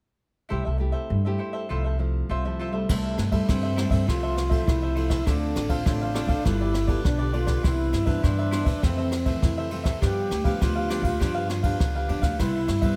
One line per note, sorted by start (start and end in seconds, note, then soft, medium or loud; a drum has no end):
0.49 0.64 C2 medium
0.49 1.08 C3 medium
0.49 0.69 A3 soft
0.49 0.64 E4 medium
0.49 0.69 E4 medium
0.49 0.69 G4 soft
0.49 0.64 A4 medium
0.49 0.64 C5 medium
0.49 0.64 E5 medium
0.65 0.92 C2 medium
0.65 0.77 A4 soft
0.65 0.77 C5 soft
0.65 0.77 E5 soft
0.77 1.20 A3 medium
0.77 1.20 E4 soft
0.77 1.21 G4 soft
0.77 muted cavaquinho stroke soft
0.92 1.23 A4 soft
0.92 1.23 C5 medium
0.92 1.23 E5 medium
1.10 1.36 G2 medium
1.10 1.67 G2 soft
1.25 1.66 A3 medium
1.25 1.66 E4 medium
1.25 1.66 G4 medium
1.25 1.38 A4 soft
1.25 1.38 C5 soft
1.25 1.39 E5 soft
1.38 1.53 E4 soft
1.38 1.53 A4 soft
1.38 1.52 C5 soft
1.38 1.52 E5 soft
1.53 1.68 A4 soft
1.53 1.68 C5 medium
1.53 1.68 E5 medium
1.69 2.21 C2 medium
1.69 2.27 C3 medium
1.69 1.95 F3 medium
1.69 1.96 A3 medium
1.69 1.96 E4 medium
1.69 1.83 F4 medium
1.69 1.84 A4 medium
1.69 1.84 C5 medium
1.69 1.83 E5 medium
1.84 1.98 A4 soft
1.84 1.99 C5 soft
1.84 1.98 E5 soft
1.99 2.27 F3 medium
1.99 2.28 A3 soft
1.99 2.28 E4 medium
1.99 muted cavaquinho stroke soft
2.29 2.80 C2 medium
2.29 2.86 C3 soft
2.29 2.43 F4 medium
2.29 2.44 A4 medium
2.29 2.44 C5 medium
2.29 2.44 E5 medium
2.45 2.70 F3 medium
2.45 2.70 A3 medium
2.45 2.70 E4 medium
2.45 2.59 A4 soft
2.45 2.59 C5 soft
2.45 2.59 E5 soft
2.59 2.73 F4 medium
2.59 2.73 A4 medium
2.59 2.72 C5 medium
2.59 2.72 E5 medium
2.72 3.13 G3 medium
2.72 3.13 A3 medium
2.72 3.13 E4 medium
2.72 2.88 A4 soft
2.72 2.88 C5 soft
2.72 2.87 E5 soft
2.89 3.15 C2 medium
2.89 3.46 C3 medium
2.89 3.49 A3 medium
2.89 3.17 E4 soft
2.89 3.17 A4 soft
2.89 3.18 C5 soft
2.89 3.18 E5 medium
2.89 kick medium
2.89 cross-stick medium
2.89 crash medium
3.18 3.44 G2 medium
3.18 muted cavaquinho stroke soft
3.18 cross-stick medium
3.18 ride soft
3.32 3.73 G3 medium
3.32 3.73 A3 medium
3.32 3.73 E4 medium
3.32 3.47 A4 medium
3.32 3.47 C5 medium
3.32 3.46 E5 medium
3.32 kick medium
3.32 ride soft
3.47 4.05 G2 medium
3.47 3.87 G2 medium
3.47 4.09 C4 medium
3.47 3.62 E4 soft
3.47 3.63 A4 soft
3.47 3.63 C5 soft
3.47 3.62 E5 medium
3.47 kick medium
3.47 cross-stick medium
3.47 ride soft
3.63 3.76 A4 medium
3.63 3.77 C5 medium
3.63 3.77 E5 medium
3.76 4.03 G3 medium
3.76 4.03 A3 medium
3.76 3.91 E4 medium
3.76 4.03 E4 medium
3.76 3.91 A4 medium
3.76 3.90 C5 medium
3.76 3.89 E5 medium
3.76 cross-stick medium
3.76 ride soft
3.89 4.04 G2 medium
3.89 4.07 A4 medium
3.89 4.06 C5 medium
3.89 4.06 E5 medium
3.89 kick medium
3.89 ride soft
4.07 4.59 C2 medium
4.07 4.64 C3 medium
4.07 4.48 F3 medium
4.07 4.48 A3 soft
4.07 4.21 F4 soft
4.07 4.67 F4 loud
4.07 4.22 A4 soft
4.07 4.22 C5 soft
4.07 4.22 E5 soft
4.07 kick medium
4.07 cross-stick medium
4.07 ride soft
4.23 4.35 A4 medium
4.23 4.35 C5 medium
4.23 4.36 E5 medium
4.36 muted cavaquinho stroke soft
4.36 cross-stick medium
4.36 ride soft
4.49 4.92 F3 medium
4.49 4.92 A3 medium
4.49 4.92 E4 medium
4.49 4.80 A4 soft
4.49 4.80 C5 medium
4.49 4.80 E5 medium
4.49 kick medium
4.49 ride soft
4.66 5.18 C2 medium
4.66 5.24 C3 medium
4.66 5.27 E4 medium
4.66 kick medium
4.66 cross-stick medium
4.66 ride soft
4.82 4.94 A4 medium
4.82 4.95 C5 medium
4.82 4.96 E5 medium
4.95 5.21 F3 soft
4.95 5.22 A3 medium
4.95 5.22 E4 medium
4.95 5.10 F4 soft
4.95 5.10 A4 soft
4.95 5.09 C5 medium
4.95 5.08 E5 medium
4.95 ride soft
5.10 5.25 A4 medium
5.10 5.25 C5 medium
5.10 5.25 E5 medium
5.10 kick medium
5.10 cross-stick medium
5.10 ride soft
5.25 5.52 D2 medium
5.25 5.83 D3 medium
5.25 5.67 C4 medium
5.25 5.54 D4 soft
5.25 5.85 D4 medium
5.25 5.67 F4 medium
5.25 5.54 A4 soft
5.25 5.67 A4 medium
5.25 5.54 C5 soft
5.25 5.55 F5 soft
5.25 kick medium
5.25 cross-stick medium
5.25 ride soft
5.55 5.81 A1 medium
5.55 muted cavaquinho stroke soft
5.55 cross-stick medium
5.55 ride medium
5.69 6.10 C4 medium
5.69 6.10 F4 medium
5.69 6.11 A4 medium
5.69 5.85 A4 medium
5.69 5.85 C5 medium
5.69 5.84 F5 medium
5.69 kick medium
5.69 ride soft
5.85 6.24 A1 medium
5.85 6.42 A2 medium
5.85 5.99 D4 soft
5.85 6.46 D4 medium
5.85 6.00 A4 soft
5.85 6.00 C5 medium
5.85 6.00 F5 medium
5.85 kick loud
5.85 cross-stick medium
5.85 ride soft
6.01 6.14 A4 medium
6.01 6.14 C5 medium
6.01 6.14 F5 medium
6.14 6.33 C4 medium
6.14 6.29 D4 medium
6.14 6.33 F4 medium
6.14 6.29 A4 medium
6.14 6.33 A4 medium
6.14 6.28 C5 medium
6.14 6.27 F5 medium
6.14 cross-stick medium
6.14 ride medium
6.27 6.41 A1 medium
6.27 6.44 A4 medium
6.27 6.44 C5 medium
6.27 6.43 F5 medium
6.27 kick medium
6.27 ride medium
6.45 6.96 G1 medium
6.45 7.02 G3 medium
6.45 6.73 B3 medium
6.45 7.03 E4 loud
6.45 6.74 F4 medium
6.45 6.60 F4 soft
6.45 6.60 G4 soft
6.45 6.74 A4 medium
6.45 6.60 B4 soft
6.45 6.59 D5 medium
6.45 kick medium
6.45 cross-stick medium
6.45 ride medium
6.61 6.73 G4 soft
6.61 6.73 B4 medium
6.61 6.74 D5 medium
6.74 muted cavaquinho stroke soft
6.74 cross-stick medium
6.74 ride soft
6.87 7.29 B3 medium
6.87 7.29 F4 medium
6.87 7.18 G4 soft
6.87 7.29 A4 medium
6.87 7.18 B4 medium
6.87 7.17 D5 medium
6.87 kick medium
6.87 ride soft
7.04 7.55 B1 medium
7.04 7.61 D3 medium
7.04 7.34 D4 medium
7.04 kick medium
7.04 cross-stick medium
7.04 ride soft
7.19 7.32 G4 medium
7.19 7.32 B4 medium
7.19 7.33 D5 medium
7.32 7.52 B3 medium
7.32 7.47 F4 soft
7.32 7.65 F4 medium
7.32 7.52 F4 medium
7.32 7.47 G4 medium
7.32 7.52 A4 medium
7.32 7.46 B4 medium
7.32 7.45 D5 medium
7.32 ride soft
7.46 7.62 G4 medium
7.46 7.62 B4 medium
7.46 7.62 D5 medium
7.46 kick medium
7.46 cross-stick medium
7.46 ride soft
7.63 7.90 C2 loud
7.63 8.21 C3 medium
7.63 7.92 E3 soft
7.63 7.92 B3 medium
7.63 7.92 D4 medium
7.63 7.91 E4 soft
7.63 8.25 E4 medium
7.63 7.92 B4 medium
7.63 7.92 C5 soft
7.63 7.92 E5 medium
7.63 kick medium
7.63 cross-stick medium
7.63 ride medium
7.92 8.19 G2 medium
7.92 muted cavaquinho stroke soft
7.92 cross-stick medium
7.92 ride soft
8.06 8.47 E3 medium
8.06 8.48 B3 medium
8.06 8.48 D4 medium
8.06 8.22 B4 medium
8.06 8.22 C5 medium
8.06 8.21 E5 medium
8.06 kick medium
8.06 ride soft
8.23 8.80 G2 medium
8.23 8.61 G2 medium
8.23 8.85 D4 medium
8.23 8.37 E4 soft
8.23 8.38 B4 medium
8.23 8.37 C5 medium
8.23 8.37 E5 medium
8.23 kick medium
8.23 cross-stick medium
8.23 ride soft
8.39 8.51 B4 medium
8.39 8.51 C5 medium
8.39 8.52 E5 medium
8.51 8.70 E3 medium
8.51 8.70 B3 medium
8.51 8.71 D4 medium
8.51 8.66 E4 medium
8.51 8.64 B4 medium
8.51 8.66 C5 medium
8.51 8.64 E5 medium
8.51 cross-stick medium
8.51 ride medium
8.64 8.79 E2 medium
8.64 8.81 B4 medium
8.64 8.81 C5 medium
8.64 8.80 E5 medium
8.64 kick medium
8.64 ride soft
8.82 9.39 F2 medium
8.82 9.34 F2 medium
8.82 9.11 E3 medium
8.82 9.11 A3 medium
8.82 9.42 C4 medium
8.82 9.11 C4 medium
8.82 8.96 F4 soft
8.82 8.97 A4 soft
8.82 8.97 C5 soft
8.82 8.96 E5 medium
8.82 kick medium
8.82 cross-stick medium
8.82 ride soft
8.98 9.10 A4 medium
8.98 9.11 C5 medium
8.98 9.11 E5 medium
9.11 muted cavaquinho stroke soft
9.11 cross-stick medium
9.11 ride soft
9.25 9.66 E3 medium
9.25 9.67 A3 medium
9.25 9.67 C4 medium
9.25 9.56 A4 soft
9.25 9.55 C5 medium
9.25 9.55 E5 medium
9.25 kick medium
9.25 ride soft
9.42 9.93 F2 medium
9.42 9.99 C3 soft
9.42 9.70 E4 medium
9.42 kick medium
9.42 cross-stick medium
9.42 ride soft
9.58 9.70 A4 medium
9.58 9.70 C5 medium
9.58 9.71 E5 medium
9.70 9.97 E3 medium
9.70 9.97 A3 medium
9.70 9.97 C4 medium
9.70 9.85 F4 soft
9.70 9.84 A4 soft
9.70 9.84 C5 soft
9.70 9.82 E5 medium
9.70 ride soft
9.84 10.00 A4 soft
9.84 10.00 C5 medium
9.84 9.99 E5 medium
9.84 kick medium
9.84 cross-stick medium
9.84 ride soft
10.01 10.58 G2 soft
10.01 10.27 G2 medium
10.01 10.30 F3 medium
10.01 10.30 B3 medium
10.01 10.29 D4 soft
10.01 10.30 D4 medium
10.01 10.63 G4 loud
10.01 10.29 G4 soft
10.01 10.29 B4 soft
10.01 10.29 F5 soft
10.01 kick medium
10.01 cross-stick medium
10.01 ride soft
10.30 10.56 D2 medium
10.30 muted cavaquinho stroke soft
10.30 cross-stick medium
10.30 ride soft
10.44 10.85 F3 medium
10.44 10.85 B3 medium
10.44 10.86 D4 medium
10.44 10.60 G4 medium
10.44 10.59 B4 medium
10.44 10.59 F5 medium
10.44 kick medium
10.44 ride soft
10.60 10.99 D2 medium
10.60 11.17 D3 medium
10.60 10.75 D4 soft
10.60 12.10 F4 medium
10.60 10.75 G4 medium
10.60 10.75 B4 medium
10.60 10.74 F5 soft
10.60 kick medium
10.60 cross-stick medium
10.60 ride medium
10.75 10.89 G4 soft
10.75 10.89 B4 medium
10.75 10.89 F5 medium
10.89 11.08 F3 medium
10.89 11.08 B3 medium
10.89 11.04 D4 medium
10.89 11.09 D4 medium
10.89 11.04 G4 medium
10.89 11.03 B4 medium
10.89 11.02 F5 medium
10.89 cross-stick medium
10.89 ride medium
11.02 11.16 D2 loud
11.02 11.19 G4 medium
11.02 11.19 B4 medium
11.02 11.18 F5 medium
11.02 kick medium
11.02 ride medium
11.19 11.71 G2 loud
11.19 11.77 G2 medium
11.19 11.61 F3 medium
11.19 11.61 B3 medium
11.19 11.33 D4 soft
11.19 11.61 D4 medium
11.19 11.34 G4 medium
11.19 11.34 B4 medium
11.19 11.33 F5 soft
11.19 kick medium
11.19 cross-stick medium
11.19 ride soft
11.35 11.47 G4 medium
11.35 11.48 B4 medium
11.35 11.48 F5 medium
11.49 muted cavaquinho stroke soft
11.49 cross-stick medium
11.49 ride soft
11.63 12.04 F3 medium
11.63 12.04 B3 medium
11.63 12.05 D4 medium
11.63 11.93 G4 soft
11.63 11.93 B4 medium
11.63 11.93 F5 medium
11.63 kick medium
11.63 ride soft
11.80 12.05 C#2 medium
11.80 12.37 D3 soft
11.80 kick medium
11.80 cross-stick medium
11.80 ride soft
11.95 12.08 G4 medium
11.95 12.09 B4 medium
11.95 12.09 F5 medium
12.08 12.20 E2 medium
12.08 12.34 F3 soft
12.08 12.35 B3 medium
12.08 12.23 D4 soft
12.08 12.35 D4 medium
12.08 12.22 G4 medium
12.08 12.22 B4 soft
12.08 12.21 F5 soft
12.08 ride soft
12.21 12.36 D2 medium
12.21 12.38 G4 soft
12.21 12.37 B4 medium
12.21 12.37 F5 medium
12.21 kick medium
12.21 cross-stick medium
12.21 ride soft
12.38 12.65 C2 medium
12.38 12.96 C3 medium
12.38 12.67 G3 medium
12.38 12.67 B3 soft
12.38 12.96 E4 medium
12.38 12.67 E4 soft
12.38 12.68 E4 medium
12.38 12.68 B4 soft
12.38 12.68 C5 soft
12.38 12.67 E5 soft
12.38 kick medium
12.38 cross-stick medium
12.38 ride medium
12.68 12.94 G2 medium
12.68 muted cavaquinho stroke soft
12.68 cross-stick medium
12.68 ride soft
12.81 12.96 G3 medium
12.81 12.96 B3 medium
12.81 12.96 E4 medium
12.81 12.96 B4 medium
12.81 12.96 C5 medium
12.81 12.96 E5 medium
12.81 kick medium
12.81 ride soft